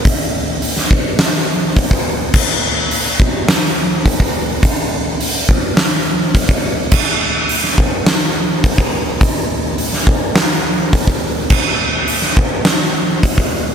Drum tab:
CC |----------------|x---------------|----------------|x---------------|
HH |o---o---o---o---|----o---o---o---|o---o---o---o---|----o---o---o---|
SD |-----o--o-------|--------o-------|--------o-------|-----o--o-------|
BD |o-----o-----oo--|o-----o-----oo--|o-----o-----oo--|o-----o-----oo--|

CC |----------------|x---------------|
HH |o---o---o---o---|----o---o---o---|
SD |-----o--o-------|-----o--o-------|
BD |o-----o-----oo--|o-----o-----oo--|